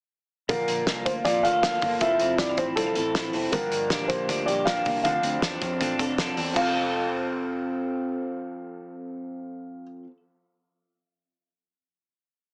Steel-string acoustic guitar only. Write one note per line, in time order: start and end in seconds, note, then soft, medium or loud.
0.49 0.87 A#2 medium
0.49 0.88 D3 medium
0.49 0.86 F3 medium
0.49 0.86 A#3 medium
0.49 0.87 F4 medium
0.86 1.25 F3 soft
0.86 1.25 A#3 medium
0.86 1.26 F4 medium
0.86 1.27 A4 medium
1.25 1.44 F3 medium
1.25 1.45 A#3 medium
1.25 1.44 F4 medium
1.25 1.43 A4 medium
1.45 1.62 F3 soft
1.45 1.63 A#3 soft
1.45 1.64 F4 soft
1.45 1.64 A4 soft
1.63 1.82 F3 medium
1.63 1.82 A#3 soft
1.63 1.82 F4 medium
1.63 1.81 A4 medium
1.82 2.00 F3 soft
1.82 2.01 A#3 soft
1.82 2.02 F4 soft
1.82 2.01 A4 medium
2.01 2.40 F3 medium
2.01 2.39 C4 medium
2.01 2.40 E4 medium
2.01 2.40 A4 medium
2.40 2.77 F3 medium
2.40 2.77 C4 medium
2.40 2.78 E4 medium
2.40 2.78 A4 medium
2.77 2.96 F3 medium
2.77 2.96 C4 medium
2.77 2.96 E4 medium
2.77 2.94 A4 medium
2.96 3.15 C4 soft
2.96 3.16 E4 soft
2.96 3.15 A4 soft
3.16 3.35 F3 medium
3.16 3.35 C4 medium
3.16 3.34 E4 medium
3.16 3.33 A4 medium
3.34 3.53 C4 soft
3.34 3.54 E4 medium
3.34 3.53 A4 medium
3.53 3.91 G2 medium
3.53 5.04 D3 medium
3.53 3.91 F3 medium
3.53 3.91 A#3 medium
3.53 3.93 D4 medium
3.53 3.92 G4 medium
3.91 4.28 F3 medium
3.91 4.28 A#3 medium
3.91 4.30 D4 medium
3.91 4.30 G4 medium
4.29 4.48 F3 medium
4.29 4.48 A#3 medium
4.29 4.48 D4 medium
4.29 4.47 G4 medium
4.48 4.66 F3 soft
4.48 4.67 A#3 soft
4.48 4.67 D4 soft
4.48 4.67 G4 soft
4.67 4.86 F3 medium
4.67 4.86 A#3 medium
4.67 4.86 D4 medium
4.67 4.85 G4 medium
4.86 5.04 F3 soft
4.86 5.05 A#3 soft
4.86 5.04 D4 soft
4.86 5.05 G4 soft
5.05 5.43 D3 medium
5.05 5.42 F3 medium
5.05 5.43 C4 medium
5.05 5.43 D4 medium
5.05 5.44 A4 medium
5.43 5.80 F3 medium
5.43 5.80 C4 medium
5.43 5.80 D4 medium
5.43 5.82 A4 medium
5.80 5.99 F3 medium
5.80 6.00 C4 medium
5.80 5.99 D4 medium
5.80 5.98 A4 medium
5.99 6.18 C4 soft
5.99 6.18 D4 soft
5.99 6.18 A4 medium
6.18 6.37 F3 medium
6.18 6.38 C4 medium
6.18 6.37 D4 medium
6.18 6.36 A4 medium
6.37 6.55 C4 soft
6.37 6.57 D4 medium
6.37 6.56 A4 medium
6.54 10.04 F3 medium
6.54 10.07 C4 medium
6.60 10.10 A4 medium